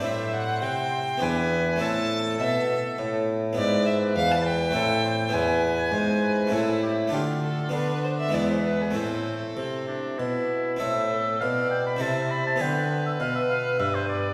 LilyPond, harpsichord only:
<<
  \new Staff \with { instrumentName = "Harpsichord" } { \time 3/4 \key a \dorian \tempo 4 = 101 <a c' e'>2 <b d' e'>4 | <a c' e'>2. | \key a \minor <b e'>2 <a c' e'>4 | <b e'>2 <a c' e'>4 |
<a d' f'>4 <b f'>4 <gis b e'>4 | <a c' e'>2. | <c' e' a'>2 <c' e' a'>4 | <b f' b'>2. | }
  \new Staff \with { instrumentName = "Harpsichord" } { \clef bass \time 3/4 \key a \dorian a,4 c4 e,4 | a,4 b,8 r8 a,4 | \key a \minor gis,4 e,4 a,4 | e,4 gis,4 a,4 |
d4 d4 e,4 | a,8 r8 c4 b,4 | a,4 b,4 c4 | d4 b,4 g,4 | }
>>